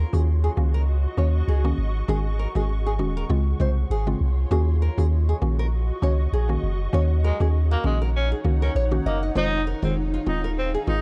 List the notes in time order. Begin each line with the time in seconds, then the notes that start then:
Already playing: F#4 A#4 D#5 C#6
0.13 D#2 D#3 A#3 C#4 F#4 G#4
0.44 G#4
0.57 C#2 D#3 A#3 C#4 F#4
0.74 A#4
1.17 D#2 D#3 A#3 C#4 F#4 C#5
1.48 C#2 G#4
1.64 D#3 A#3 C#4 F#4
1.78 G#1
2.08 G#1 D#3 G#3 C#4 F#4 G#4
2.39 A#4
2.55 G#1 D#3 G#3 C#4 F#4 G#4
2.86 G#4
2.99 D#1 D#3 G#3 C#4 F#4
3.17 A#4
3.29 C#2 C#3 G#3 C4 F4
3.60 C2 C#3 G#3 C4 F4 C5
3.90 G#1 G#4
4.07 C#3 G#3 C4 F4
4.21 C2
4.51 D#2 D#3 A#3 C#4 F#4 G#4 D#5 C#6
4.82 A#4
4.98 D#2 D#3 A#3 C#4 F#4 G#4
5.29 G#4
5.42 A#1 D#3 A#3 C#4 F#4
5.59 A#4
6.02 C#2 D#3 A#3 C#4 F#4 C#5
6.33 A#1 G#4
6.49 D#3 A#3 C#4 F#4
6.63 F#1
6.93 D#2 D#3 A#3 C#4 D#4 F#4 C#5 F#5
7.24 G#3 A#4
7.40 D#2 D#3 A#3 C#4 F#4 G#4
7.71 A#3 F#4
7.84 A#1 D#3 G#3 A#3 C#4 F#4
8.02 A#4
8.16 C#4
8.32 G#4
8.44 C#2 D#3 A#3 C#4 F#4
8.62 C#4 A#4
8.75 A#1 C#5
8.91 D#3 A#3 C#4 F#4
9.06 F#1 A#3 D#5
9.23 D#5
9.35 F1 D#3 G#3 C4 D#4 F4 G#4 C5 F5
9.67 A#4
9.82 F1 D#3 G#3 C4 F4 G#4
10.14 F4
10.26 D#1 D#3 G#3 C4 D#4 F4
10.44 A#4
10.58 C4
10.74 G#4
10.87 G#1 D#3 G#3 C4 D#4 F4